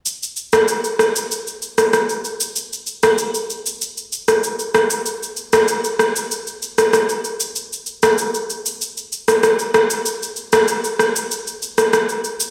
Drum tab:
SH |xxxxxxxxxxxxxxxx|xxxxxxxxxxxxxxxx|xxxxxxxxxxxxxxxx|xxxxxxxxxxxxxxxx|
SD |---r--r----rr---|---r-------r--r-|---r--r----rr---|---r-------rr-r-|

SH |xxxxxxxxxxxxxxxx|
SD |---r--r----rr---|